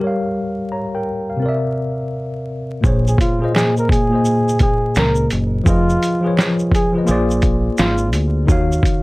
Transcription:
Already playing: tine electric piano G3 G4
0.01 tine electric piano A#4 C#5
0.07 tine electric piano F5
0.72 tine electric piano C#5 A#5
0.95 tine electric piano A#4 G5
1.30 tine electric piano F5
1.37 tine electric piano C3 C4
1.43 tine electric piano A#4 D5
1.49 tine electric piano E5
2.81 fingered electric bass A#1, tine electric piano A#2 A#3 G#4, kick, shaker
2.86 tine electric piano C5 C#5
3.07 flugelhorn G#4, shaker
3.18 flugelhorn F4, kick, closed hi-hat, shaker
3.39 tine electric piano A#2 A#3 G#4
3.44 tine electric piano C5 D#5
3.55 flugelhorn G#4, finger snap, snare, shaker
3.77 flugelhorn A#4, shaker
3.89 flugelhorn G#4, kick, closed hi-hat, shaker
4.09 tine electric piano A#2 A#3 G#4
4.14 tine electric piano C5 D#5
4.25 shaker
4.49 shaker
4.59 flugelhorn G#4, kick, closed hi-hat, shaker
4.95 fingered electric bass C#2, flugelhorn A#4, finger snap, snare, shaker
5.15 shaker
5.30 fingered electric bass F#1, closed hi-hat, shaker
5.64 fingered electric bass F1, tine electric piano F3 F4 G#4, kick, shaker
5.68 flugelhorn F4, tine electric piano B4 D#5
5.89 shaker
6.03 closed hi-hat, shaker
6.21 tine electric piano F3 F4 G#4
6.26 tine electric piano B4 C#5
6.37 finger snap, snare, shaker
6.59 shaker
6.72 flugelhorn G#4, kick, closed hi-hat, shaker
6.92 tine electric piano F3 F4 G#4
6.97 tine electric piano B4 D#5
7.05 fingered electric bass A#1, tine electric piano A#3 F4 G#4, shaker
7.09 tine electric piano C5 D5
7.30 shaker
7.42 kick, closed hi-hat, shaker
7.78 fingered electric bass G#1, flugelhorn F4, finger snap, snare, shaker
7.98 shaker
8.13 fingered electric bass D2, closed hi-hat, shaker
8.46 fingered electric bass D#2, tine electric piano D#3 D#4 F#4, kick, shaker
8.50 tine electric piano C#5 F5
8.72 shaker
8.83 kick, closed hi-hat, shaker

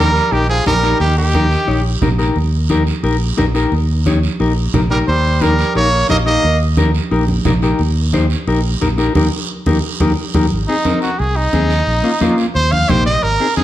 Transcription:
Already playing: fingered electric bass D#2
0.00 tenor saxophone G3, clean electric guitar G4 A#4, trumpet A#4
0.16 short guiro
0.32 fingered electric bass A#1, tenor saxophone D#3, clean electric guitar D#4 G4 A#4, trumpet G4, long guiro
0.49 tenor saxophone F3, trumpet G#4
0.66 fingered electric bass A#1, tenor saxophone G3, clean electric guitar D#4 G4 A#4, trumpet A#4, high conga, short guiro
0.83 clean electric guitar D#4 G4 A#4, short guiro
1.00 fingered electric bass D#2, tenor saxophone D#3, trumpet G4, long guiro
1.17 tenor saxophone D#3, trumpet G4
1.34 clean electric guitar D#4 G4 A#4, high conga, short guiro
1.51 short guiro
1.68 fingered electric bass A#1, clean electric guitar D#4 G4 C#5, long guiro
2.02 fingered electric bass A#1, clean electric guitar D#4 G4 A#4, high conga, low conga, short guiro
2.18 clean electric guitar D#4 G4 A#4, short guiro
2.36 fingered electric bass D#2, long guiro
2.69 clean electric guitar D#4 G4 A#4, high conga, short guiro
2.87 short guiro
3.03 fingered electric bass A#1, clean electric guitar D#4 G4 A#4, long guiro
3.37 fingered electric bass A#1, clean electric guitar D#4 G4 A#4, high conga, short guiro
3.55 clean electric guitar D#4 G4 A#4, short guiro
3.72 fingered electric bass D#2, long guiro
4.06 clean electric guitar D#4 G4 C#5, high conga, short guiro
4.23 short guiro
4.40 fingered electric bass A#1, clean electric guitar D#4 G4 A#4, long guiro
4.74 fingered electric bass A#1, clean electric guitar D#4 G4 A#4, high conga, low conga, short guiro
4.91 tenor saxophone G3, clean electric guitar D#4 G4 A#4, trumpet A#4, short guiro
5.08 fingered electric bass D#2, tenor saxophone G3, trumpet C5, long guiro
5.41 tenor saxophone G3, clean electric guitar D#4 G4 A#4, trumpet A#4, high conga, short guiro
5.59 short guiro
5.75 fingered electric bass A#1, tenor saxophone A#3, clean electric guitar D#4 G4 A#4, trumpet C#5, long guiro
6.09 fingered electric bass A#1, tenor saxophone A#3, clean electric guitar D#4 G4 A#4, trumpet D#5, high conga, short guiro
6.26 tenor saxophone A#3, clean electric guitar D#4 G4 A#4, trumpet D#5, short guiro
6.43 fingered electric bass D#2, long guiro
6.77 clean electric guitar D#4 G4 A#4, high conga, short guiro
6.95 short guiro
7.11 fingered electric bass A#1, clean electric guitar D#4 G4 A#4, long guiro
7.28 high conga
7.45 fingered electric bass A#1, clean electric guitar D#4 G4 A#4, high conga, low conga, short guiro
7.62 clean electric guitar D#4 G4 A#4, short guiro
7.79 fingered electric bass D#2, long guiro
8.13 clean electric guitar D#4 G4 C5, high conga, short guiro
8.30 short guiro
8.47 fingered electric bass A#1, clean electric guitar D#4 G4 A#4, long guiro
8.81 fingered electric bass A#1, clean electric guitar D#4 G4 A#4, high conga, short guiro
8.98 clean electric guitar D#4 G4 A#4, short guiro
9.15 fingered electric bass D#2, clean electric guitar D#4 G4 A#4, high conga, long guiro
9.66 fingered electric bass D#2, clean electric guitar D#4 G4 A#4, high conga, long guiro
10.00 fingered electric bass D#2, clean electric guitar D#4 G4 A#4, high conga, long guiro
10.34 fingered electric bass D#2, clean electric guitar D#4 G4 A#4, high conga, long guiro
10.51 fingered electric bass G#1, long guiro
10.68 clean electric guitar C4 D#4 G#4, trumpet D#4
10.85 clean electric guitar C4 D#4 A#4, high conga, short guiro
11.02 trumpet F#4, short guiro
11.19 fingered electric bass C2, trumpet G#4, long guiro
11.36 trumpet D#4
11.53 fingered electric bass D#2, clean electric guitar C4 D#4 G#4, high conga, short guiro
11.70 short guiro
11.87 fingered electric bass A#1, long guiro
12.04 clean electric guitar A#3 C#4 F4
12.21 clean electric guitar A#3 C#4 F4, high conga, short guiro
12.38 short guiro
12.55 fingered electric bass D#2, trumpet C5, long guiro
12.72 trumpet F5, high conga
12.89 fingered electric bass A#1, clean electric guitar A#3 D#4 G4, trumpet C5, high conga, low conga, short guiro
13.06 trumpet D#5, short guiro
13.23 fingered electric bass G#1, trumpet A#4, long guiro
13.40 clean electric guitar C4 D#4 G#4
13.57 clean electric guitar C4 D#4 G#4, trumpet G#4, high conga, short guiro

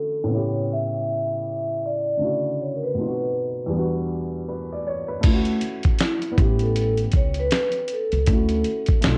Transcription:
Already playing: upright piano D3 A3 C#4 E4 F#4, vibraphone A4
0.24 upright piano A2 B3
0.30 upright piano C#3 E4
0.34 upright piano G4, vibraphone C#5
0.73 vibraphone E5
1.86 vibraphone D5
2.17 upright piano C#3 D3 A3
2.22 upright piano E4 F#4
2.62 vibraphone C#5
2.75 vibraphone A#4
2.83 vibraphone B4
2.95 upright piano B2 A3 C4
2.99 upright piano D#4 F4
3.07 upright piano F#4
3.66 upright piano E2 G3
3.72 upright piano B3 D4
3.78 upright piano F#4
4.48 upright piano B4
4.72 upright piano D5
4.87 upright piano C#5
5.08 upright piano B4
5.21 upright bass D2, upright piano A3 C#4 E4, kick, closed hi-hat, crash
5.27 upright piano F4
5.34 upright piano F#4
5.45 closed hi-hat
5.61 closed hi-hat
5.83 kick, closed hi-hat
5.99 vibraphone E4, snare, closed hi-hat
6.22 closed hi-hat
6.32 upright piano B3 C#4
6.38 upright bass A1, upright piano E4, vibraphone G4, kick, closed hi-hat
6.44 upright piano G4
6.59 vibraphone A4, closed hi-hat
6.76 vibraphone A4, closed hi-hat
6.97 closed hi-hat
7.12 upright bass C#2, kick, closed hi-hat
7.16 vibraphone C#5
7.34 closed hi-hat
7.39 vibraphone B4
7.51 snare, closed hi-hat
7.72 closed hi-hat
7.88 closed hi-hat
7.93 vibraphone A4
8.12 upright bass C#2, closed hi-hat
8.26 upright bass D2, upright piano A3 C#4, kick, closed hi-hat
8.31 upright piano E4 F#4
8.49 closed hi-hat
8.64 closed hi-hat
8.86 kick, closed hi-hat
9.01 upright bass B1, upright piano A3 C#4, snare, closed hi-hat
9.05 upright piano D#4 F4
9.14 upright piano F#4

